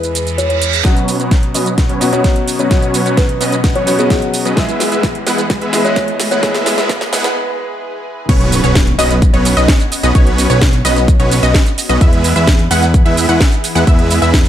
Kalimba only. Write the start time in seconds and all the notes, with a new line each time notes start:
0.38 C#5
0.50 C#5
2.13 C#5
2.59 C#5
3.17 B4
3.76 C#5
3.87 C#5
3.99 G#4
5.85 C#5
6.31 C#5
7.13 D#5
7.24 B4